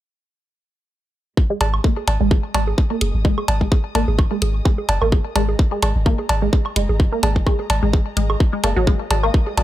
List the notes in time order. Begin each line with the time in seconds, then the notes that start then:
1.37 G#3, kick
1.50 G#3 G#4
1.61 G#1, closed hi-hat, cowbell, low bongo
1.68 D#6
1.74 high woodblock
1.84 A#3 D#5, kick
1.97 low bongo
2.08 G#1, closed hi-hat, cowbell
2.20 G#1 G#3
2.31 kick, low bongo
2.54 G#1 G#3, closed hi-hat, cowbell, high woodblock
2.67 low bongo
2.78 kick
2.91 A#3
3.01 F#1, closed hi-hat, low bongo
3.14 G#1
3.25 G#3, kick
3.38 low bongo, high woodblock
3.48 G#1, closed hi-hat, cowbell
3.61 G#3, kick
3.72 kick, low bongo
3.95 G#1 A#3, closed hi-hat, cowbell
4.08 G#1, low bongo
4.19 kick, high woodblock
4.31 G#3
4.42 G#1, closed hi-hat, low bongo
4.65 G#3, kick
4.78 low bongo
4.89 F#1, closed hi-hat, cowbell
5.01 G#1 A#3, high woodblock
5.12 kick, low bongo
5.35 G#1 G#3, closed hi-hat, cowbell
5.43 A#5
5.49 low bongo
5.59 kick
5.72 G#3
5.82 G#1, closed hi-hat, cowbell, low bongo, high woodblock
5.95 G#1
6.06 A#3, kick
6.19 low bongo
6.29 G#1, closed hi-hat, cowbell
6.42 G#3
6.53 kick, low bongo
6.66 high woodblock
6.76 F#1 G#3, closed hi-hat
6.89 G#1, low bongo
7.00 kick
7.12 A#3
7.23 G#1, closed hi-hat, cowbell, low bongo
7.36 kick
7.47 G#3, kick, high woodblock
7.60 low bongo
7.70 G#1, closed hi-hat, cowbell
7.83 G#1 G#3
7.93 kick, low bongo
8.17 G#1 G#3, closed hi-hat
8.30 low bongo, high woodblock
8.40 kick
8.53 G#3
8.64 F#1 A#3, closed hi-hat, cowbell, low bongo
8.77 G#1 F#3
8.87 G#3, kick
9.11 G#1, closed hi-hat, cowbell, low bongo
9.18 D#6
9.23 A#3, high woodblock
9.34 kick
9.47 low bongo
9.57 G#1 F#3, closed hi-hat, cowbell